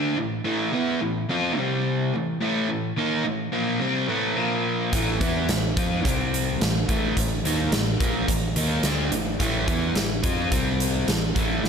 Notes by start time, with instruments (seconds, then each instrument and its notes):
Already playing: overdriven electric guitar D3 A3 D4
0.17 overdriven electric guitar A2 E3
0.45 overdriven electric guitar A2 E3 A3
0.73 overdriven electric guitar E3 B3 E4
1.01 overdriven electric guitar A2 E3
1.29 overdriven electric guitar F3 C4 F4
1.57 overdriven electric guitar C3 G3 C4
2.14 overdriven electric guitar A2 E3
2.41 overdriven electric guitar A2 E3 A3
2.69 overdriven electric guitar A2 E3
2.97 overdriven electric guitar D#3 A#3 D#4
3.25 overdriven electric guitar A2 E3
3.52 overdriven electric guitar A#2 F3 A#3
3.80 overdriven electric guitar C3 G3 C4
4.08 overdriven electric guitar A2 E3 A3
4.36 overdriven electric guitar A#2 F3 A#3
4.92 fingered electric bass A1, overdriven electric guitar A2 E3 A3, kick, closed hi-hat
5.20 fingered electric bass E2, overdriven electric guitar E3 B3 E4, kick, closed hi-hat
5.49 fingered electric bass A1, overdriven electric guitar A2 E3, snare, closed hi-hat
5.77 fingered electric bass F2, overdriven electric guitar F3 C4 F4, kick, closed hi-hat
6.05 fingered electric bass C2, overdriven electric guitar C3 G3 C4, kick, closed hi-hat
6.34 closed hi-hat
6.61 fingered electric bass A1, overdriven electric guitar A2 E3, snare, closed hi-hat
6.88 fingered electric bass A1, overdriven electric guitar A2 E3 A3, kick, closed hi-hat
7.17 fingered electric bass A1, overdriven electric guitar A2 E3, kick, closed hi-hat
7.44 fingered electric bass D#2, overdriven electric guitar D#3 A#3 D#4, closed hi-hat
7.72 fingered electric bass A1, overdriven electric guitar A2 E3, snare, closed hi-hat
8.00 fingered electric bass A#1, overdriven electric guitar A#2 F3 A#3, kick, closed hi-hat
8.28 fingered electric bass A1, overdriven electric guitar A2 E3, kick, closed hi-hat
8.56 fingered electric bass D#2, overdriven electric guitar D#3 A#3 D#4, closed hi-hat
8.83 fingered electric bass D2, overdriven electric guitar D3 A3 D4, snare, closed hi-hat
9.12 fingered electric bass A1, overdriven electric guitar A2 E3, closed hi-hat
9.40 fingered electric bass A1, overdriven electric guitar A2 E3 A3, kick, closed hi-hat
9.68 fingered electric bass E2, overdriven electric guitar E3 B3 E4, kick, closed hi-hat
9.95 fingered electric bass A1, overdriven electric guitar A2 E3, snare, closed hi-hat
10.24 fingered electric bass F2, overdriven electric guitar F3 C4 F4, kick, closed hi-hat
10.52 fingered electric bass C2, overdriven electric guitar C3 G3 C4, kick, closed hi-hat
10.80 closed hi-hat
11.07 fingered electric bass A1, overdriven electric guitar A2 E3, snare, closed hi-hat
11.35 fingered electric bass A1, overdriven electric guitar A2 E3 A3, kick, closed hi-hat
11.64 fingered electric bass A1, overdriven electric guitar A2 E3, snare